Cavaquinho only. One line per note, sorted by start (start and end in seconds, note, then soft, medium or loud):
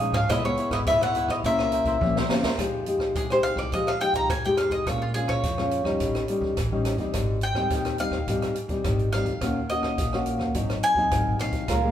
0.00 0.15 C#5 soft
0.00 0.15 F5 soft
0.00 0.14 G#5 medium
0.15 0.29 C#5 soft
0.15 0.29 F5 soft
0.15 0.28 G#5 soft
0.31 0.57 E4 medium
0.31 0.58 B4 medium
0.31 0.58 C#5 medium
0.31 0.59 E5 medium
0.59 0.72 E4 soft
0.59 0.72 B4 soft
0.59 0.72 C#5 soft
0.59 0.72 E5 soft
0.73 0.82 E4 medium
0.73 0.82 B4 medium
0.73 0.82 C#5 medium
0.73 0.82 E5 medium
0.88 1.01 E4 medium
0.88 1.01 B4 medium
0.88 1.02 C#5 medium
0.88 1.01 E5 medium
1.02 1.15 B4 soft
1.02 1.16 C#5 soft
1.02 1.15 E5 soft
1.16 1.29 E4 medium
1.16 1.29 B4 medium
1.16 1.29 C#5 medium
1.16 1.29 E5 medium
1.30 1.44 B4 soft
1.30 1.44 C#5 soft
1.30 1.43 E5 soft
1.45 1.71 E4 medium
1.45 1.72 A#4 medium
1.45 1.73 C5 medium
1.45 1.73 E5 medium
1.73 1.85 E4 soft
1.73 1.85 A#4 soft
1.73 1.86 C5 medium
1.73 1.86 E5 medium
1.86 1.96 E4 medium
1.86 1.96 A#4 medium
1.86 1.96 C5 medium
1.86 1.96 E5 medium
2.18 2.45 A#4 soft
2.18 2.44 C5 soft
2.18 2.43 E5 medium
2.44 2.58 A#4 soft
2.44 2.58 C5 soft
2.44 2.57 E5 medium
11.69 11.91 F4 medium
11.69 11.91 A#4 medium
11.69 11.91 C#5 medium
11.69 11.91 F5 medium